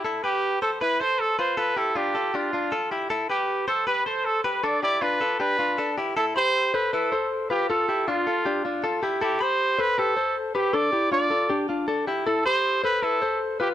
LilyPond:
<<
  \new Staff \with { instrumentName = "Trumpet" } { \time 4/4 \key a \minor \tempo 4 = 157 r8 g'4 a'8 b'8 c''8 a'8 c''8 | b'8 a'8 g'4 f'4. r8 | r8 g'4 a'8 b'8 c''8 a'8 b'8 | d''8 d''8 b'4 b'4. r8 |
a'8 c''4 b'8 a'4 r8 g'8 | a'4 f'4. r4. | g'8 c''4 b'8 a'4 r8 g'8 | d''4 d''4. r4. |
a'8 c''4 b'8 a'4 r8 g'8 | }
  \new Staff \with { instrumentName = "Clean electric guitar" } { \time 4/4 \key a \minor <e' a'>8 <g' b'>4 <a' c''>8 <e' b'>8 <a' c''>4 <f' b'>8 | <f' a'>8 <e' g'>8 <d' f'>8 <f' a'>8 <d' g'>8 <d' f'>8 <f' a'>8 <e' g'>8 | <e' a'>8 <g' b'>4 <a' c''>8 <g' b'>8 <a' c''>4 <g' b'>8 | <d' a'>8 <e' g'>8 <d' f'>8 <f' a'>8 <d' g'>8 <d' f'>8 <d' a'>8 <e' g'>8 |
<e' a'>8 <g' b''>4 <a' c''>8 <e' b'>8 <a' c''>4 <f' b'>8 | <f' a'>8 <e' g'>8 <d' f'>8 <f' a'>8 <d' g'>8 <d' f'>8 <f' a'>8 <e' g'>8 | <e' a'>8 <g' b''>4 <a' c''>8 <g' b'>8 <a' c''>4 <g' b'>8 | <d' a'>8 <e' g'>8 <d' f'>8 <f' a'>8 <d' g'>8 <d' f'>8 <d' a'>8 <e' g'>8 |
<e' a'>8 <g' b''>4 <a' c''>8 <e' b'>8 <a' c''>4 <f' b'>8 | }
>>